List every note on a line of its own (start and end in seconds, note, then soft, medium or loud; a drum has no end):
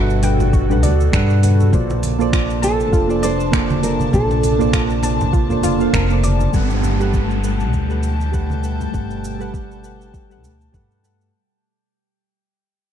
0.00 0.83 G1 loud
0.00 1.69 B2 medium
0.00 0.20 G3 loud
0.00 0.20 D4 medium
0.00 0.21 F#4 medium
0.00 1.69 F#4 medium
0.00 0.20 A4 medium
0.00 1.70 A4 medium
0.00 0.21 B4 medium
0.00 0.80 E5 medium
0.00 0.21 F#5 loud
0.10 cabasa soft
0.22 0.65 G3 medium
0.22 0.66 D4 medium
0.22 0.66 A4 medium
0.22 0.67 B4 medium
0.22 0.67 F#5 medium
0.22 0.51 G5 medium
0.22 open hi-hat medium
0.22 muted conga medium
0.22 cabasa medium
0.40 low conga medium
0.40 cabasa soft
0.53 0.71 F#4 medium
0.53 kick loud
0.53 cabasa soft
0.69 0.91 G3 medium
0.69 0.91 D4 medium
0.69 0.91 A4 medium
0.69 0.92 B4 medium
0.69 0.92 F#5 loud
0.69 low conga medium
0.69 cabasa soft
0.83 1.07 D2 medium
0.83 1.01 D5 medium
0.83 open hi-hat medium
0.83 high conga medium
0.83 cabasa medium
1.00 cabasa soft
1.12 1.68 G2 medium
1.12 1.40 G3 loud
1.12 1.40 D4 medium
1.12 1.40 A4 medium
1.12 1.41 B4 medium
1.12 1.41 F#5 loud
1.12 finger snap loud
1.12 kick loud
1.12 cabasa soft
1.30 cabasa soft
1.42 1.69 G3 medium
1.42 1.70 D4 medium
1.42 1.70 A4 medium
1.42 1.70 B4 medium
1.42 1.71 F#5 medium
1.42 open hi-hat medium
1.42 high conga medium
1.42 cabasa medium
1.60 high conga medium
1.60 cabasa soft
1.71 2.93 A#1 loud
1.71 6.49 C3 medium
1.71 2.15 A#3 medium
1.71 6.49 D4 medium
1.71 2.16 F4 medium
1.71 2.16 A4 medium
1.71 2.16 C5 medium
1.71 2.17 D5 medium
1.71 6.50 A5 medium
1.71 kick loud
1.71 cabasa soft
1.90 muted conga medium
1.90 cabasa soft
2.03 open hi-hat medium
2.03 high conga medium
2.03 cabasa medium
2.19 2.59 A#3 loud
2.19 2.60 F4 medium
2.19 2.60 A4 medium
2.19 2.60 C5 loud
2.19 2.61 D5 loud
2.19 muted conga soft
2.19 cabasa soft
2.33 2.60 F4 medium
2.33 finger snap loud
2.33 kick loud
2.33 cabasa soft
2.50 cabasa soft
2.60 3.05 A#3 medium
2.60 3.05 F4 medium
2.60 3.05 A4 medium
2.60 3.20 A4 loud
2.60 3.06 C5 medium
2.60 3.06 D5 medium
2.60 2.90 A5 medium
2.60 open hi-hat medium
2.60 muted conga medium
2.60 cabasa medium
2.80 cabasa soft
2.92 4.08 F1 loud
2.92 3.11 F4 medium
2.92 kick loud
2.92 cabasa soft
3.07 3.30 A#3 medium
3.07 3.30 F4 medium
3.07 3.31 A4 medium
3.07 3.31 C5 medium
3.07 3.31 D5 loud
3.07 cabasa soft
3.23 3.83 C5 loud
3.23 3.41 D5 medium
3.23 open hi-hat loud
3.23 cabasa medium
3.40 cabasa soft
3.51 3.79 A#3 medium
3.51 3.79 F4 medium
3.51 3.80 A4 medium
3.51 3.80 C5 medium
3.51 3.81 D5 loud
3.51 finger snap loud
3.51 kick loud
3.51 muted conga medium
3.51 cabasa soft
3.70 high conga loud
3.70 cabasa soft
3.81 4.09 A#3 medium
3.81 4.10 F4 medium
3.81 4.10 A4 medium
3.81 4.11 A#4 loud
3.81 4.10 C5 medium
3.81 4.11 D5 medium
3.81 open hi-hat medium
3.81 cabasa medium
4.00 high conga medium
4.00 low conga medium
4.00 cabasa soft
4.11 5.63 A#1 loud
4.11 4.55 A#3 medium
4.11 4.56 F4 medium
4.11 4.56 A4 medium
4.11 5.90 A4 loud
4.11 4.56 C5 medium
4.11 4.57 D5 medium
4.11 kick loud
4.11 cabasa soft
4.31 muted conga medium
4.31 cabasa soft
4.43 open hi-hat medium
4.43 high conga medium
4.43 cabasa medium
4.58 4.99 A#3 loud
4.58 5.00 F4 medium
4.58 5.00 A4 medium
4.58 5.00 C5 medium
4.58 5.01 D5 loud
4.58 muted conga soft
4.58 low conga medium
4.58 cabasa soft
4.73 5.00 F4 medium
4.73 finger snap loud
4.73 kick loud
4.73 cabasa soft
4.90 cabasa soft
5.02 5.45 A#3 medium
5.02 5.46 F4 medium
5.02 5.46 A4 medium
5.02 5.46 C5 medium
5.02 5.47 D5 medium
5.02 5.31 A5 medium
5.02 open hi-hat medium
5.02 muted conga medium
5.02 cabasa medium
5.21 low conga loud
5.21 cabasa soft
5.33 5.51 F4 medium
5.33 kick medium
5.33 cabasa soft
5.49 5.60 A#3 medium
5.49 5.61 F4 medium
5.49 5.61 A4 medium
5.49 5.61 C5 medium
5.49 5.62 D5 medium
5.49 low conga medium
5.49 cabasa soft
5.62 5.87 F1 medium
5.62 5.75 A#3 medium
5.62 5.76 F4 medium
5.62 5.91 F4 loud
5.62 5.76 A4 medium
5.62 5.77 C5 medium
5.62 5.77 D5 medium
5.62 open hi-hat medium
5.62 high conga medium
5.62 cabasa medium
5.78 6.05 A#3 medium
5.78 6.06 F4 medium
5.78 6.06 A4 medium
5.78 6.06 C5 medium
5.78 6.07 F5 loud
5.78 cabasa soft
5.93 6.48 F1 medium
5.93 6.11 A#4 loud
5.93 finger snap loud
5.93 kick loud
5.93 cabasa soft
6.10 6.50 A#3 medium
6.10 6.50 F4 medium
6.10 6.51 A4 medium
6.10 6.51 C5 medium
6.10 6.51 D5 medium
6.10 cabasa soft
6.23 6.51 D5 medium
6.23 open hi-hat medium
6.23 high conga medium
6.23 cabasa medium
6.40 high conga medium
6.40 cabasa soft
6.52 7.74 G1 medium
6.52 11.29 B2 medium
6.52 6.96 G3 medium
6.52 11.35 G3 medium
6.52 11.29 A3 medium
6.52 6.96 G4 medium
6.52 6.97 A4 medium
6.52 6.97 B4 medium
6.52 6.97 F#5 medium
6.52 11.35 G5 medium
6.52 11.29 A5 medium
6.52 kick loud
6.52 downlifter medium
6.52 cabasa soft
6.70 cabasa soft
6.84 high conga medium
6.84 cabasa medium
6.99 7.40 G3 medium
6.99 7.40 G4 medium
6.99 7.40 A4 medium
6.99 7.41 B4 medium
6.99 7.41 F#5 medium
6.99 cabasa soft
7.14 kick loud
7.14 cabasa soft
7.31 cabasa soft
7.42 7.85 G3 medium
7.42 7.86 G4 medium
7.42 7.86 A4 medium
7.42 7.86 B4 medium
7.42 7.87 F#5 medium
7.42 cabasa medium
7.60 cabasa soft
7.73 8.88 D2 loud
7.73 kick medium
7.73 cabasa soft
7.88 8.10 G3 medium
7.88 8.11 G4 medium
7.88 8.11 A4 medium
7.88 8.11 B4 medium
7.88 8.12 F#5 medium
7.88 cabasa soft
8.03 cabasa medium
8.21 cabasa soft
8.31 8.59 G3 medium
8.31 8.59 G4 medium
8.31 8.60 A4 medium
8.31 8.60 B4 medium
8.31 8.60 F#5 medium
8.31 kick loud
8.31 cabasa soft
8.50 high conga medium
8.50 cabasa soft
8.62 8.89 G3 medium
8.62 8.90 G4 medium
8.62 8.90 A4 medium
8.62 8.90 B4 medium
8.62 8.91 F#5 medium
8.62 cabasa medium
8.80 high conga medium
8.80 low conga medium
8.80 cabasa soft
8.91 10.43 G1 medium
8.91 9.35 G3 medium
8.91 9.36 G4 medium
8.91 9.36 A4 medium
8.91 9.36 B4 medium
8.91 9.37 F#5 medium
8.91 kick loud
8.91 cabasa soft
9.11 cabasa soft
9.24 cabasa medium
9.39 9.79 G3 medium
9.39 9.80 G4 medium
9.39 9.80 A4 medium
9.39 9.80 B4 medium
9.39 9.81 F#5 loud
9.39 cabasa soft
9.54 kick medium
9.54 cabasa soft
9.71 cabasa soft
9.82 10.26 G3 medium
9.82 10.26 G4 medium
9.82 10.26 A4 medium
9.82 10.27 B4 medium
9.82 10.27 F#5 medium
9.82 cabasa medium
10.01 cabasa soft
10.14 kick medium
10.14 cabasa soft
10.29 10.50 G3 medium
10.29 10.51 G4 medium
10.29 10.51 A4 medium
10.29 10.52 B4 medium
10.29 10.52 F#5 medium
10.29 cabasa soft
10.43 10.67 D2 medium
10.43 cabasa medium
10.61 cabasa soft
10.72 11.28 G2 medium
10.72 10.99 G3 medium
10.72 11.00 G4 medium
10.72 11.00 A4 medium
10.72 11.01 B4 medium
10.72 11.01 F#5 medium
10.72 kick loud
10.72 cabasa soft
10.91 cabasa soft
11.03 11.30 G3 medium
11.03 11.30 G4 medium
11.03 11.30 A4 medium
11.03 11.31 B4 medium
11.03 11.31 F#5 medium
11.03 cabasa medium
11.21 cabasa soft